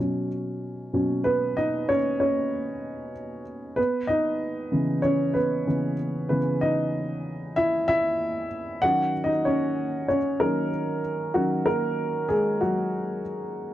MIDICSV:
0, 0, Header, 1, 2, 480
1, 0, Start_track
1, 0, Tempo, 631579
1, 948, Time_signature, 4, 2, 24, 8
1, 10442, End_track
2, 0, Start_track
2, 0, Title_t, "Upright piano"
2, 0, Program_c, 0, 0
2, 0, Control_c, 0, 64, 127
2, 0, Note_on_c, 0, 47, 36
2, 0, Note_on_c, 0, 54, 37
2, 0, Note_on_c, 0, 61, 43
2, 204, Note_off_c, 0, 47, 0
2, 205, Note_off_c, 0, 54, 0
2, 206, Note_off_c, 0, 61, 0
2, 710, Note_on_c, 0, 47, 40
2, 713, Note_on_c, 0, 54, 40
2, 717, Note_on_c, 0, 61, 53
2, 944, Note_on_c, 0, 71, 81
2, 959, Note_on_c, 0, 59, 62
2, 1169, Note_off_c, 0, 71, 0
2, 1178, Note_off_c, 0, 59, 0
2, 1191, Note_on_c, 0, 75, 82
2, 1202, Note_on_c, 0, 63, 60
2, 1419, Note_off_c, 0, 63, 0
2, 1432, Note_off_c, 0, 61, 0
2, 1434, Note_on_c, 0, 73, 83
2, 1437, Note_off_c, 0, 75, 0
2, 1444, Note_on_c, 0, 61, 60
2, 1488, Note_off_c, 0, 73, 0
2, 1496, Note_off_c, 0, 61, 0
2, 1672, Note_on_c, 0, 73, 71
2, 1681, Note_on_c, 0, 61, 56
2, 2360, Note_off_c, 0, 73, 0
2, 2365, Note_off_c, 0, 61, 0
2, 2600, Note_off_c, 0, 47, 0
2, 2601, Note_off_c, 0, 54, 0
2, 2859, Note_on_c, 0, 71, 78
2, 2876, Note_on_c, 0, 59, 60
2, 2880, Control_c, 0, 64, 0
2, 3028, Control_c, 0, 64, 127
2, 3087, Note_off_c, 0, 71, 0
2, 3096, Note_off_c, 0, 59, 0
2, 3096, Note_on_c, 0, 75, 84
2, 3116, Note_on_c, 0, 63, 67
2, 3584, Note_on_c, 0, 49, 44
2, 3588, Note_on_c, 0, 52, 42
2, 3593, Note_on_c, 0, 59, 48
2, 3792, Note_off_c, 0, 75, 0
2, 3803, Note_off_c, 0, 63, 0
2, 3817, Note_on_c, 0, 73, 68
2, 3837, Note_on_c, 0, 61, 57
2, 4056, Note_on_c, 0, 71, 71
2, 4057, Note_off_c, 0, 61, 0
2, 4066, Note_off_c, 0, 59, 0
2, 4071, Note_off_c, 0, 73, 0
2, 4077, Note_on_c, 0, 59, 54
2, 4297, Note_off_c, 0, 49, 0
2, 4300, Note_off_c, 0, 52, 0
2, 4303, Note_off_c, 0, 59, 0
2, 4309, Note_on_c, 0, 49, 42
2, 4312, Note_on_c, 0, 52, 38
2, 4315, Note_on_c, 0, 59, 50
2, 4512, Note_off_c, 0, 71, 0
2, 4525, Note_off_c, 0, 49, 0
2, 4527, Note_off_c, 0, 52, 0
2, 4528, Note_off_c, 0, 59, 0
2, 4782, Note_on_c, 0, 71, 69
2, 4785, Note_on_c, 0, 49, 50
2, 4788, Note_on_c, 0, 52, 42
2, 4793, Note_on_c, 0, 59, 56
2, 4836, Note_off_c, 0, 71, 0
2, 4849, Note_off_c, 0, 59, 0
2, 5025, Note_on_c, 0, 75, 81
2, 5036, Note_on_c, 0, 63, 60
2, 5717, Note_off_c, 0, 75, 0
2, 5722, Note_off_c, 0, 63, 0
2, 5748, Note_on_c, 0, 76, 93
2, 5756, Note_on_c, 0, 64, 70
2, 5976, Note_off_c, 0, 64, 0
2, 5976, Note_off_c, 0, 76, 0
2, 5988, Note_on_c, 0, 76, 106
2, 5996, Note_on_c, 0, 64, 74
2, 6438, Note_off_c, 0, 76, 0
2, 6442, Note_off_c, 0, 64, 0
2, 6676, Note_off_c, 0, 49, 0
2, 6678, Note_off_c, 0, 52, 0
2, 6700, Note_on_c, 0, 78, 96
2, 6705, Note_on_c, 0, 51, 51
2, 6712, Note_on_c, 0, 54, 45
2, 6714, Note_on_c, 0, 61, 55
2, 6717, Note_on_c, 0, 66, 75
2, 6720, Control_c, 0, 64, 0
2, 6833, Control_c, 0, 64, 127
2, 6927, Note_off_c, 0, 78, 0
2, 6936, Note_off_c, 0, 66, 0
2, 7021, Note_on_c, 0, 75, 77
2, 7038, Note_on_c, 0, 63, 60
2, 7059, Note_off_c, 0, 75, 0
2, 7076, Note_off_c, 0, 63, 0
2, 7183, Note_on_c, 0, 73, 74
2, 7187, Note_off_c, 0, 61, 0
2, 7198, Note_on_c, 0, 61, 63
2, 7635, Note_off_c, 0, 73, 0
2, 7643, Note_off_c, 0, 61, 0
2, 7664, Note_on_c, 0, 73, 72
2, 7678, Note_on_c, 0, 61, 59
2, 7718, Note_off_c, 0, 73, 0
2, 7731, Note_off_c, 0, 61, 0
2, 7897, Note_off_c, 0, 51, 0
2, 7900, Note_off_c, 0, 54, 0
2, 7903, Note_on_c, 0, 70, 81
2, 7908, Note_on_c, 0, 51, 44
2, 7911, Note_on_c, 0, 54, 40
2, 7914, Note_on_c, 0, 61, 52
2, 7916, Note_on_c, 0, 58, 53
2, 8125, Note_off_c, 0, 51, 0
2, 8126, Note_off_c, 0, 54, 0
2, 8128, Note_off_c, 0, 61, 0
2, 8356, Note_off_c, 0, 70, 0
2, 8362, Note_off_c, 0, 58, 0
2, 8619, Note_on_c, 0, 66, 76
2, 8624, Note_on_c, 0, 51, 51
2, 8628, Note_on_c, 0, 54, 64
2, 8633, Note_on_c, 0, 61, 54
2, 8847, Note_off_c, 0, 66, 0
2, 8856, Note_off_c, 0, 54, 0
2, 8858, Note_on_c, 0, 70, 84
2, 8872, Note_on_c, 0, 58, 70
2, 9316, Note_off_c, 0, 51, 0
2, 9320, Note_off_c, 0, 58, 0
2, 9321, Note_off_c, 0, 61, 0
2, 9337, Note_on_c, 0, 68, 78
2, 9352, Note_on_c, 0, 56, 54
2, 9358, Note_off_c, 0, 70, 0
2, 9574, Note_off_c, 0, 56, 0
2, 9582, Note_on_c, 0, 66, 66
2, 9591, Note_off_c, 0, 68, 0
2, 9595, Note_on_c, 0, 54, 48
2, 10036, Note_off_c, 0, 66, 0
2, 10042, Note_off_c, 0, 54, 0
2, 10442, End_track
0, 0, End_of_file